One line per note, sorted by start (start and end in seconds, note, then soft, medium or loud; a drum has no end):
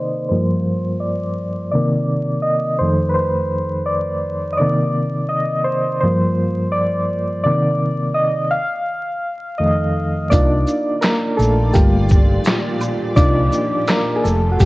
0.00 0.27 C3 soft
0.00 0.27 D#3 soft
0.00 0.27 A#3 soft
0.00 0.33 D#4 medium
0.00 0.28 C5 medium
0.00 0.33 D5 medium
0.00 0.33 D#5 medium
0.29 0.80 G2 soft
0.29 0.81 F3 soft
0.29 0.81 A#3 soft
0.29 0.98 C5 medium
1.00 1.69 D5 medium
1.72 2.77 C3 medium
1.72 2.77 D#3 soft
1.72 2.78 A#3 medium
1.72 2.47 D5 medium
2.42 2.81 D#5 medium
2.79 3.30 F2 soft
2.79 3.31 D#3 soft
2.79 3.31 A3 medium
2.79 3.07 C5 medium
3.09 3.16 B4 medium
3.14 3.89 C5 medium
3.86 4.55 D5 medium
4.52 4.59 D#5 medium
4.57 5.99 C3 medium
4.57 5.99 D#3 soft
4.57 5.99 A#3 medium
4.57 5.26 D5 medium
5.29 5.63 D#5 medium
5.64 5.99 C5 medium
6.01 7.06 G2 medium
6.01 7.06 F3 soft
6.01 7.07 A#3 medium
6.01 6.75 C5 medium
6.72 7.42 D5 medium
7.44 8.49 C3 medium
7.44 8.49 D#3 soft
7.44 8.49 A#3 medium
7.44 8.12 D5 medium
8.14 8.53 D#5 medium
8.51 9.62 F5 loud
9.58 10.27 F2 medium
9.58 10.28 D#3 soft
9.58 10.28 A3 medium
9.58 10.26 D#5 medium
10.30 10.63 C2 loud
10.30 14.20 A#2 medium
10.30 11.73 D#3 medium
10.30 11.02 A#3 medium
10.30 10.99 D4 medium
10.30 11.35 D#4 soft
10.30 11.73 F4 medium
10.30 11.35 F4 medium
10.30 11.04 D5 medium
10.30 14.21 D5 medium
10.30 kick medium
10.30 closed hi-hat medium
10.30 maracas medium
10.67 maracas soft
10.67 shaker soft
11.01 11.36 A#3 medium
11.01 11.39 A#4 medium
11.01 snare loud
11.01 clap medium
11.01 closed hi-hat medium
11.01 maracas medium
11.37 11.70 A#1 medium
11.37 11.72 A3 medium
11.37 11.74 A4 medium
11.37 maracas soft
11.42 shaker medium
11.73 12.37 G1 loud
11.73 13.17 F3 medium
11.73 12.78 G3 medium
11.73 13.13 A3 medium
11.73 13.13 A#3 soft
11.73 13.13 F4 medium
11.73 12.77 G4 medium
11.73 13.16 G4 medium
11.73 kick medium
11.73 closed hi-hat medium
11.73 maracas medium
12.09 kick medium
12.09 maracas soft
12.09 shaker soft
12.45 snare loud
12.45 clap medium
12.45 closed hi-hat medium
12.45 maracas medium
12.81 high woodblock medium
12.81 maracas soft
12.81 shaker soft
13.16 13.48 C2 loud
13.16 14.65 D#3 medium
13.16 13.88 A#3 medium
13.16 13.85 D4 medium
13.16 14.20 D#4 soft
13.16 14.65 F4 medium
13.16 14.20 F4 medium
13.16 13.90 D5 loud
13.16 kick loud
13.16 closed hi-hat medium
13.16 maracas medium
13.52 maracas soft
13.52 shaker soft
13.87 14.16 A#3 medium
13.87 14.16 A#4 medium
13.87 snare loud
13.87 clap medium
13.87 closed hi-hat medium
13.87 maracas medium
14.16 14.23 G#4 medium
14.24 14.56 F1 loud
14.24 14.65 G3 medium
14.24 14.65 A3 medium
14.24 14.52 A3 medium
14.24 14.55 A4 medium
14.24 maracas soft
14.24 shaker medium
14.52 14.59 F#4 medium
14.60 14.65 G1 medium
14.60 14.65 G3 medium
14.60 14.65 G4 medium
14.60 kick medium
14.60 closed hi-hat medium
14.60 maracas medium